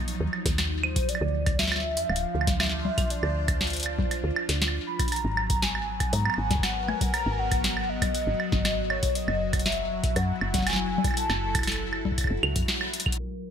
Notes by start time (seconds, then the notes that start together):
Already playing: F3 F#3 D#4 C#5
0.08 closed hi-hat
0.20 D#2
0.33 claves
0.46 D#2, kick, snare, closed hi-hat
0.58 snare, closed hi-hat, claves
0.83 C5, claves
0.96 kick, closed hi-hat
1.09 F3 D5, closed hi-hat
1.15 claves
1.21 D2
1.41 D4
1.46 kick, closed hi-hat, claves
1.59 F4 E5, snare, closed hi-hat
1.63 snare
1.67 snare
1.72 snare, claves
1.76 snare
1.80 C5, snare
1.97 F2, closed hi-hat
2.09 D1 F5, claves
2.16 closed hi-hat
2.35 D2
2.41 claves
2.47 kick, snare, closed hi-hat, low conga
2.60 E5, snare, claves
2.63 snare
2.66 snare
2.69 snare
2.85 low conga
2.98 kick, closed hi-hat, low conga, claves
3.10 D5, closed hi-hat
3.23 D2, claves
3.48 kick, closed hi-hat, claves
3.61 snare, closed hi-hat
3.64 closed hi-hat
3.67 closed hi-hat
3.70 closed hi-hat
3.73 closed hi-hat
3.77 closed hi-hat
3.80 closed hi-hat
3.83 closed hi-hat, claves
3.99 F2, kick, low conga
4.11 closed hi-hat, claves
4.24 D2
4.36 claves
4.49 D2, snare, closed hi-hat
4.62 snare, closed hi-hat
4.68 claves
4.87 F#3 B5
4.99 kick, closed hi-hat, claves
5.08 closed hi-hat
5.12 F#4 A#5, closed hi-hat, claves
5.16 closed hi-hat
5.25 G#1
5.29 B3
5.37 claves
5.50 kick, closed hi-hat
5.62 G#5, snare, closed hi-hat
5.75 claves
6.00 B1, kick, closed hi-hat, claves
6.13 G#2 A#5, closed hi-hat
6.25 claves
6.30 claves
6.34 A#4, claves
6.38 G#1 G#5
6.51 kick, snare, closed hi-hat, low conga
6.55 kick
6.59 kick
6.63 F#5, snare, closed hi-hat, claves
6.88 G#5, low conga, claves
7.01 kick, closed hi-hat, low conga
7.14 A#5, closed hi-hat, claves
7.26 G#1
7.32 G#5
7.39 F#5
7.51 kick, closed hi-hat, claves
7.64 snare, closed hi-hat
7.77 claves
7.89 D#5
8.02 B1, kick, closed hi-hat, low conga, claves
8.15 closed hi-hat
8.27 G#1
8.40 claves
8.52 G#1, kick, snare
8.65 snare, closed hi-hat, claves
8.90 C#5, claves
9.03 kick, closed hi-hat
9.15 D#5, closed hi-hat
9.28 F#1, claves
9.45 E4
9.53 kick, closed hi-hat, claves
9.59 closed hi-hat
9.66 E5, snare, closed hi-hat
9.72 closed hi-hat
10.04 A1, kick, closed hi-hat
10.16 F#2 F#5, closed hi-hat, claves
10.41 F#1 A4, claves
10.54 kick, snare, closed hi-hat, low conga
10.58 snare, low conga
10.62 snare, low conga
10.67 G#5, snare, closed hi-hat, claves
10.70 snare
10.73 snare
10.76 snare
10.98 low conga
11.04 kick, closed hi-hat, low conga, claves
11.08 claves
11.11 claves
11.14 A5, closed hi-hat, claves
11.30 F#1, snare, claves
11.55 kick, closed hi-hat, claves
11.59 claves
11.63 closed hi-hat, claves
11.67 snare, closed hi-hat, claves
11.72 closed hi-hat, claves
11.76 claves
11.93 claves
12.05 A1, kick, low conga
12.12 kick
12.18 kick, closed hi-hat, claves
12.21 kick, claves
12.24 claves
12.27 F#1, claves
12.43 C#2, claves
12.56 F#2, kick, closed hi-hat
12.68 snare
12.81 claves
12.94 closed hi-hat
13.00 closed hi-hat
13.06 kick, claves
13.12 closed hi-hat
13.19 F#3 A#4 C#5 C6